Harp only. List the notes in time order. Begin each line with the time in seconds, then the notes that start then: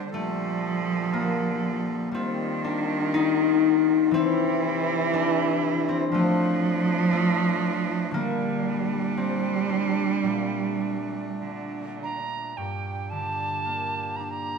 Already playing: D3 G3 A#3
0.14 A3
1.13 A#3
2.11 G3 C4
2.64 D4
3.14 D#4
4.11 E3 C4
5.13 D4
5.89 C4
6.12 F3 A3
7.13 A3
8.11 D3 A#3
9.17 C4
9.69 D4
10.23 A#2 G3
12.58 G2
13.12 D3
13.66 A#3
14.20 D4